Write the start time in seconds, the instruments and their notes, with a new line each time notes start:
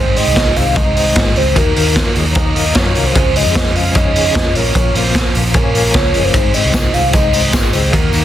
Already playing: fingered electric bass G#1, overdriven electric guitar G#2 D#3 G#3 C4 D#4 G#4, upright piano C4 D#4 G#4 C5, soft synth lead C5
0.16 overdriven electric guitar G#3 C4 D#4 G#4, soft synth lead D#5, open hi-hat
0.26 fingered electric bass C2
0.35 clean electric guitar G#3, kick, snare, hi-hat pedal, ride
0.46 overdriven electric guitar G#2 D#3 G#3 C4 D#4 G#4
0.56 fingered electric bass C2, clean electric guitar C4, soft synth lead F5, open hi-hat
0.76 overdriven electric guitar G#2 D#3 G#3 C4 D#4 G#4, soft synth lead D#5, kick, ride
0.95 overdriven electric guitar G#2 D#3 G#3 C4 D#4 G#4, open hi-hat
1.16 fingered electric bass G#1, clean electric guitar G#3, kick, snare, hi-hat pedal, ride
1.25 overdriven electric guitar G#2 D#3 G#3 C4 D#4 G#4
1.36 fingered electric bass C#2, clean electric guitar C4, soft synth lead C5, open hi-hat
1.55 fingered electric bass D#2, overdriven electric guitar D#3 A#3 D#4 F#4, upright piano A#3 D#4 F#4 A#4, soft synth lead A#4, kick, hi-hat pedal, ride
1.75 fingered electric bass D#2, overdriven electric guitar D#3 A#3 D#4 F#4, soft synth lead A#4, open hi-hat
1.95 clean electric guitar F#3, kick, snare, ride
2.05 overdriven electric guitar D#3 A#3 D#4 F#4
2.15 fingered electric bass D#2, clean electric guitar G#3, open hi-hat
2.26 clean electric guitar A#3
2.35 overdriven electric guitar D#3 A#3 D#4 F#4, soft synth lead D#5, kick, hi-hat pedal, ride
2.54 overdriven electric guitar D#3 A#3 D#4 F#4, open hi-hat
2.75 fingered electric bass F#2, clean electric guitar F#3, soft synth lead C#5, kick, snare, hi-hat pedal, ride
2.85 overdriven electric guitar D#3 A#3 D#4 F#4
2.95 fingered electric bass C2, clean electric guitar A#3, open hi-hat
3.06 soft synth lead C5
3.14 fingered electric bass C#2, overdriven electric guitar C#3 F3 G#3 C#4 F4, upright piano G#3 C#4 F4 G#4, kick, hi-hat pedal, ride
3.34 overdriven electric guitar F3 G#3 C#4 F4, soft synth lead D#5, open hi-hat
3.45 fingered electric bass F2
3.55 clean electric guitar F3, kick, snare, hi-hat pedal, ride
3.65 overdriven electric guitar C#3 F3 G#3 C#4 F4
3.75 clean electric guitar G#3, soft synth lead F5, open hi-hat
3.95 overdriven electric guitar C#3 F3 G#3 C#4 F4, soft synth lead D#5, kick, hi-hat pedal, ride
4.14 overdriven electric guitar C#3 F3 G#3 C#4 F4, open hi-hat
4.35 fingered electric bass F2, clean electric guitar F3, kick, snare, ride
4.45 overdriven electric guitar C#3 F3 G#3 C#4 F4
4.54 fingered electric bass A#1, overdriven electric guitar A#2 F3 A#3 C#4 F4, upright piano A#3 C#4 F4 A#4, soft synth lead C#5, open hi-hat
4.75 fingered electric bass A#1, clean electric guitar A#2, soft synth lead C#5, kick, hi-hat pedal, ride
4.95 fingered electric bass A#1, overdriven electric guitar F3 A#3 C#4 F4, soft synth lead C5, open hi-hat
5.15 clean electric guitar F3, kick, snare, ride
5.25 overdriven electric guitar A#2 F3 A#3 C#4 F4
5.34 fingered electric bass A#1, clean electric guitar A#3, open hi-hat
5.54 overdriven electric guitar A#2 F3 A#3 C#4 F4, soft synth lead A#4, kick, hi-hat pedal, ride
5.74 overdriven electric guitar A#2 F3 A#3 C#4 F4, open hi-hat
5.94 fingered electric bass C#2, clean electric guitar F3, soft synth lead C#5, kick, snare, hi-hat pedal, ride
6.04 overdriven electric guitar A#2 F3 A#3 C#4 F4
6.13 fingered electric bass F#1, clean electric guitar G#3, upright piano A#3 C#4 F4 A#4, open hi-hat
6.24 clean electric guitar A#3, soft synth lead C5
6.32 fingered electric bass G#1, overdriven electric guitar G#2 D#3 G#3 C4 D#4 G#4, upright piano C4 D#4 G#4 C5, kick, hi-hat pedal, ride, tambourine
6.53 overdriven electric guitar G#3 C4 D#4 G#4, soft synth lead D#5, open hi-hat, tambourine
6.64 fingered electric bass C2
6.73 clean electric guitar G#3, kick, snare, hi-hat pedal, ride, tambourine
6.83 overdriven electric guitar G#2 D#3 G#3 C4 D#4 G#4
6.94 fingered electric bass C2, clean electric guitar C4, soft synth lead F5, open hi-hat, tambourine
7.13 overdriven electric guitar G#2 D#3 G#3 C4 D#4 G#4, soft synth lead D#5, kick, hi-hat pedal, ride, tambourine
7.32 overdriven electric guitar G#2 D#3 G#3 C4 D#4 G#4, upright piano C4 D#4 G#4 C5, open hi-hat, tambourine
7.53 fingered electric bass G#1, clean electric guitar G#3, kick, snare, ride, tambourine
7.63 overdriven electric guitar G#2 D#3 G#3 C4 D#4 G#4
7.73 fingered electric bass C#2, clean electric guitar C4, soft synth lead C5, open hi-hat, tambourine
7.90 fingered electric bass D#2, overdriven electric guitar D#3 A#3 D#4 F#4, upright piano A#3 D#4 F#4 A#4, soft synth lead A#4, kick, ride, tambourine
8.12 fingered electric bass D#2, overdriven electric guitar D#3 A#3 D#4 F#4, soft synth lead A#4, open hi-hat, tambourine